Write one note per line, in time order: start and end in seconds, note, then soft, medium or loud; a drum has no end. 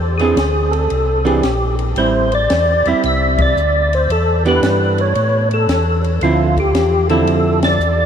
0.00 0.35 E2 medium
0.18 0.36 E3 medium
0.18 0.36 C4 medium
0.18 0.36 D4 medium
0.18 0.73 G#4 medium
0.18 0.36 G#4 medium
0.18 ride soft
0.36 0.88 D2 medium
0.36 snare medium
0.36 hi-hat pedal medium
0.36 ride medium
0.71 1.27 A4 medium
0.71 ride soft
0.90 1.42 C2 medium
0.90 ride soft
1.25 1.41 E3 medium
1.25 1.41 C4 medium
1.25 1.42 D4 medium
1.25 1.75 G4 medium
1.25 1.42 G#4 medium
1.25 ride soft
1.43 1.95 A#1 medium
1.43 snare medium
1.43 hi-hat pedal medium
1.43 ride medium
1.79 ride soft
1.96 2.48 A1 medium
1.96 2.29 G3 medium
1.96 2.29 C4 medium
1.96 2.30 E4 medium
1.96 2.34 C5 medium
1.96 ride medium
2.32 2.88 D5 loud
2.32 ride soft
2.50 2.83 E2 medium
2.50 snare medium
2.50 hi-hat pedal medium
2.50 ride medium
2.85 2.94 E2 soft
2.85 3.54 G3 soft
2.85 3.54 C4 medium
2.85 3.54 E4 medium
2.85 3.03 E5 medium
2.85 ride soft
3.04 3.55 C2 medium
3.04 3.41 E5 medium
3.04 ride soft
3.38 3.95 D5 loud
3.38 kick medium
3.38 ride medium
3.56 4.08 D2 medium
3.56 hi-hat pedal soft
3.93 4.11 C5 medium
3.93 ride soft
4.09 4.61 E2 medium
4.09 4.44 A4 medium
4.09 ride medium
4.45 5.12 E3 medium
4.45 5.13 B3 medium
4.45 5.13 D4 medium
4.45 5.13 G4 medium
4.45 5.01 B4 medium
4.45 ride soft
4.62 5.14 G2 medium
4.62 snare medium
4.62 hi-hat pedal medium
4.62 ride medium
4.98 5.49 C#5 loud
4.98 ride soft
5.15 5.67 A2 medium
5.15 ride soft
5.51 6.02 A4 medium
5.51 ride soft
5.68 6.20 E2 medium
5.68 snare medium
5.68 hi-hat pedal medium
5.68 ride medium
6.04 ride soft
6.21 6.73 D2 medium
6.21 6.55 D3 medium
6.21 6.55 F3 medium
6.21 6.55 C4 medium
6.21 6.55 E4 medium
6.21 6.59 F4 medium
6.21 ride soft
6.57 7.08 G4 medium
6.57 kick soft
6.57 ride soft
6.73 7.26 E2 medium
6.73 snare medium
6.73 hi-hat pedal soft
6.73 ride medium
7.09 7.77 D3 medium
7.09 7.78 F3 medium
7.09 7.78 C4 medium
7.09 7.78 E4 medium
7.09 7.60 A4 medium
7.09 ride soft
7.25 7.78 F2 medium
7.25 ride medium
7.63 8.06 D5 loud
7.63 snare medium
7.63 ride medium
7.79 8.06 E2 medium
7.79 hi-hat pedal medium